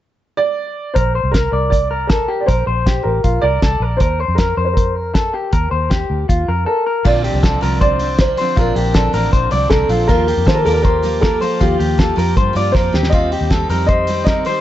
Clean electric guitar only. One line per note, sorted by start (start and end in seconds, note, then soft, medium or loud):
0.95 1.15 A#4 medium
1.15 1.33 C5 medium
1.34 1.53 A#4 medium
1.53 1.89 D5 medium
1.91 2.09 A#4 medium
2.09 2.29 A4 medium
2.28 2.48 G4 medium
2.48 2.67 A#4 medium
2.67 2.86 C5 medium
2.86 3.22 G4 medium
3.24 3.43 F4 medium
3.44 3.63 A#4 medium
3.63 3.82 A4 medium
3.82 4.00 A#4 medium
4.01 4.20 A#4 medium
4.20 4.38 C5 medium
4.39 4.57 A#4 medium
4.57 4.95 C5 medium
4.95 5.14 A#4 medium
5.14 5.34 A4 medium
5.34 5.53 G4 medium
5.53 5.71 A#4 medium
5.71 5.91 C5 medium
5.90 6.26 G4 medium
6.29 6.48 F4 medium
6.48 6.66 A#4 medium
6.66 6.86 A4 medium
6.87 7.05 A#4 medium
7.05 7.24 F4 medium
7.24 7.43 G4 medium
7.43 7.62 A4 medium
7.62 7.81 A#4 medium
7.81 8.19 C5 medium
8.19 8.38 A#4 medium
8.38 8.57 C5 medium
8.57 8.75 F4 medium
8.75 8.95 G4 medium
8.95 9.13 A4 medium
9.14 9.32 A#4 medium
9.33 9.51 C5 medium
9.52 9.71 D5 medium
9.71 9.90 A#4 medium
9.90 10.08 F4 medium
10.09 10.27 F4 medium
10.27 10.47 G4 medium
10.47 10.65 A4 medium
10.66 10.84 A#4 medium
10.84 11.21 C5 medium
11.22 11.41 A#4 medium
11.41 11.61 C5 medium
11.60 11.79 F4 medium
11.80 11.99 G4 medium
11.99 12.18 A4 medium
12.18 12.37 A#4 medium
12.37 12.56 C5 medium
12.57 12.75 D5 medium
12.75 12.94 A#4 medium
12.95 13.13 G4 medium
13.14 13.32 F4 medium
13.33 13.51 G4 medium
13.51 13.70 A4 medium
13.70 13.88 A#4 medium
13.89 14.25 C5 medium
14.27 14.46 A#4 medium
14.46 14.61 C5 medium